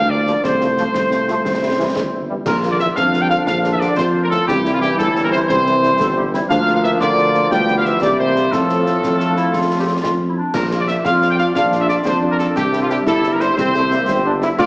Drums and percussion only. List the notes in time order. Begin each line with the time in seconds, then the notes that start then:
0.27 snare
0.44 concert bass drum, snare
0.61 snare
0.77 snare
0.94 concert bass drum, snare
1.11 snare
1.28 snare
1.45 concert bass drum, snare
1.96 concert bass drum, snare
2.46 concert bass drum, snare, crash
2.63 snare
2.80 snare
2.96 concert bass drum, snare
3.13 snare
3.30 snare
3.47 concert bass drum, snare
3.64 snare
3.81 snare
3.98 concert bass drum, snare
4.31 snare
4.48 concert bass drum, snare
4.65 snare
4.82 snare
4.99 concert bass drum, snare
5.16 snare
5.33 snare
5.49 concert bass drum, snare
5.66 snare
5.83 snare
6.00 concert bass drum, snare
6.34 snare
6.51 concert bass drum, snare, crash
6.67 snare
6.84 snare
7.01 concert bass drum, snare
7.17 snare
7.34 snare
7.51 concert bass drum, snare
7.68 snare
7.85 snare
8.02 concert bass drum, snare
8.36 snare
8.52 concert bass drum, snare
8.69 snare
8.86 snare
9.03 concert bass drum, snare
9.20 snare
9.37 snare
9.53 concert bass drum, snare
10.04 concert bass drum, snare
10.54 concert bass drum, snare, crash
10.71 snare
10.88 snare
11.05 concert bass drum, snare
11.22 snare
11.39 snare
11.55 concert bass drum, snare
11.72 snare
11.89 snare
12.05 concert bass drum, snare
12.39 snare
12.56 concert bass drum, snare
12.73 snare
12.90 snare
13.07 concert bass drum, snare
13.23 snare
13.40 snare
13.58 concert bass drum, snare
13.74 snare
13.91 snare
14.08 concert bass drum, snare
14.42 snare
14.59 concert bass drum, snare, crash